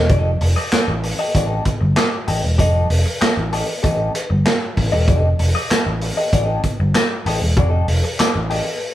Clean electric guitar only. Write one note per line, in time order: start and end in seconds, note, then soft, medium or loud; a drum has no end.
0.09 0.29 G4 medium
0.09 0.30 A4 medium
0.09 0.30 D#5 medium
0.41 muted clean electric guitar stroke soft
0.56 0.71 G4 medium
0.56 0.72 A4 medium
0.56 0.72 D#5 medium
0.72 0.92 G4 medium
0.72 0.93 A4 medium
0.72 0.93 D#5 medium
1.04 muted clean electric guitar stroke soft
1.19 1.33 G4 medium
1.19 1.34 A4 medium
1.19 1.34 D#5 medium
1.35 1.47 F#4 medium
1.35 1.47 G#4 medium
1.35 1.48 D5 medium
1.47 1.63 G4 medium
1.47 1.64 A4 medium
1.47 1.64 D#5 medium
1.66 muted clean electric guitar stroke soft
1.81 muted clean electric guitar stroke soft
1.97 2.16 G4 medium
1.97 2.12 A4 medium
1.97 2.11 D#5 medium
2.12 muted clean electric guitar stroke soft
2.28 2.43 G4 medium
2.28 2.43 A4 medium
2.28 2.43 D#5 medium
2.58 2.87 G4 medium
2.58 2.88 A4 loud
2.58 2.88 D#5 loud
3.06 muted clean electric guitar stroke soft
3.21 3.41 G4 medium
3.21 3.37 A4 medium
3.21 3.36 D#5 loud
3.37 muted clean electric guitar stroke medium
3.53 3.68 G4 medium
3.53 3.68 A4 medium
3.53 3.67 D#5 medium
3.68 muted clean electric guitar stroke medium
3.83 4.12 G4 medium
3.83 4.12 A4 medium
3.83 4.12 D#5 medium
4.30 muted clean electric guitar stroke soft
4.46 muted clean electric guitar stroke soft
4.62 muted clean electric guitar stroke soft
4.92 5.07 G4 medium
4.92 5.08 A4 medium
4.92 5.08 D#5 medium
5.08 5.28 G4 medium
5.08 5.28 A4 loud
5.08 5.29 D#5 medium
5.39 muted clean electric guitar stroke soft
5.55 5.70 G4 medium
5.55 5.71 A4 medium
5.55 5.70 D#5 medium
5.71 5.90 G4 medium
5.71 5.91 A4 medium
5.71 5.91 D#5 medium
6.02 muted clean electric guitar stroke soft
6.17 6.31 G4 medium
6.17 6.32 A4 medium
6.17 6.32 D#5 medium
6.33 6.45 F#4 medium
6.33 6.45 G#4 medium
6.33 6.46 D5 medium
6.45 6.61 G4 medium
6.45 6.61 A4 medium
6.45 6.62 D#5 medium
6.64 muted clean electric guitar stroke soft
6.80 muted clean electric guitar stroke medium
6.95 7.14 G4 medium
6.95 7.11 A4 loud
6.95 7.10 D#5 loud
7.11 muted clean electric guitar stroke soft
7.26 7.41 G4 medium
7.26 7.41 A4 medium
7.26 7.40 D#5 medium
7.57 7.69 F#4 medium
7.57 7.70 G#4 loud
7.57 7.70 D5 medium
7.69 7.86 G4 medium
7.69 7.86 A4 loud
7.69 7.87 D#5 medium
8.04 muted clean electric guitar stroke soft
8.19 8.39 G4 medium
8.19 8.34 A4 loud
8.19 8.33 D#5 medium
8.34 muted clean electric guitar stroke medium
8.50 8.66 G4 medium
8.50 8.65 A4 medium
8.50 8.64 D#5 medium
8.66 muted clean electric guitar stroke soft